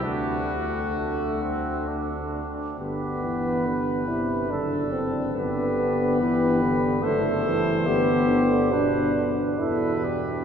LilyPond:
<<
  \new Staff \with { instrumentName = "Trumpet" } { \time 3/4 \key g \major \tempo 4 = 70 fis'2 r4 | b'2 a'4 | b'2 c''4~ | c''4. r8 b'4 | }
  \new Staff \with { instrumentName = "Trumpet" } { \time 3/4 \key g \major d'4 a8 c'8 d'4 | g'4 b'4 a'4 | g'4 g'4 a'4 | g'4 b'8 r8 a'8 g'8 | }
  \new Staff \with { instrumentName = "French horn" } { \time 3/4 \key g \major a2~ a8 r8 | b4. e'8 d'8 c'8 | b2 a4 | b4 d'8 d'8 e'8 r8 | }
  \new Staff \with { instrumentName = "Euphonium" } { \clef bass \time 3/4 \key g \major d2~ d8 r8 | d8 e8 d8 c8 d4 | d4 e8 d8 d8 e8 | d8 d8 b,8 r8 b,4 | }
  \new Staff \with { instrumentName = "Bass trombone" } { \clef bass \time 3/4 \key g \major d,2~ d,8 r8 | g,,2 fis,,4 | g,,2 fis,,4 | g,,4. r8 e,4 | }
>>